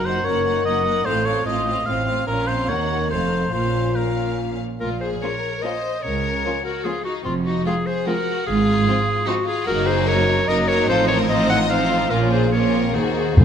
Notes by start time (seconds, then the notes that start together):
Already playing: F#1 F#2 F#4
0.05 A#3 D#4 C5 F#5
0.24 F#1 F#2 A#3 D#4 A#4 C#5 F#5
0.46 A#3 D#4 F#5
0.65 F#1 F#2 A#3 D#4 D#5 F#5
0.86 A#3 D#4 F#5
1.05 A1 A2 C4 F4 A4 C5 F5
1.26 C4 F4 C#5 F5
1.46 A1 A2 C4 F4 D#5 F5
1.66 C4 F4 F5
1.86 A1 A2 C4 F4 F5
2.07 C4 F4 F5
2.27 A#1 A#2 C#4 F4 A#4 F5
2.47 C4 C5
2.69 D#2 A#3 D#4 A#4 C#5 F#5
3.10 F1 F2 A3 D#4 A4 C5 F5
3.52 A#1 A#2 A#3 C#4 F4 C5 F5
3.95 A#3 C#4 A#4 F5
4.80 A#1 A#2 F4 A#4
5.00 G#4 C5
5.22 F3 A#3 C#4 F4 A#4 C#5
5.62 F3 A#3 C#4 F4 C5 D#5
6.02 C#2 C#3 A#4 C#5
6.45 F3 A#3 C#4 F4
6.64 F#4 A#4
6.84 F3 A#3 C#4 F4 G#4
7.04 D#4 F#4
7.24 F1 F2 C4 F4
7.45 D#4 F#4
7.65 F3 G#3 C4 F4 G#4
7.86 G#4 C5
8.06 F3 G#3 C4 F4 F#4 A#4
8.46 G#1 G#2 F4 G#4
8.87 F3 C4 F4
9.25 F3 C4 D#4 F4 F#4
9.45 F4 G#4
9.65 F#1 F#2 F#3 A#3 D#4 F#4 A#4
9.86 G#4 C5
10.06 A#4 C#5
10.48 F#1 F#2 F#3 A#3 D#4 A#4 D#5
10.68 A#4 C#5
10.89 A1 A2 F3 C4 D#4 F4 A4 C5
11.08 A#4 C#5
11.29 F3 C4 D#4 F4 C5 D#5
11.50 D#5 F#5
11.70 F3 C4 D#4 F4 C5 F5
12.10 A#1 A#2 F3 A#3 C#4 F4 A#4
12.32 G#4 C5
12.52 F3 A#3 C#4 F4 A#4 C#5
12.74 C4
12.94 D#2 D#3 A#3 F#4 G#4 C5
13.36 F1 F2 C3 A#3 F4 G#4 C5